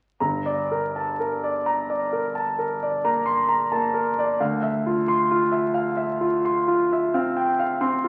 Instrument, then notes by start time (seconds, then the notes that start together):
grand piano
0.20 G1 A#5
0.46 D5
0.71 A#4
0.96 A5
1.20 A#4
1.44 D5
1.66 A#5
1.90 D5
2.13 A#4
2.35 A5
2.59 A#4
2.83 D5
3.04 A#3 A#5
3.26 C6
3.49 A#5
3.72 A#3 A5
3.94 A#4
4.19 D5
4.40 D2 F5
4.63 E5
4.86 F4
5.08 C6
5.31 F4
5.52 E5
5.74 F5
5.97 E5
6.21 F4
6.45 C6
6.68 F4
6.93 E5
7.14 C4 F5
7.37 G5
7.59 F5
7.81 C4 C6
8.04 F4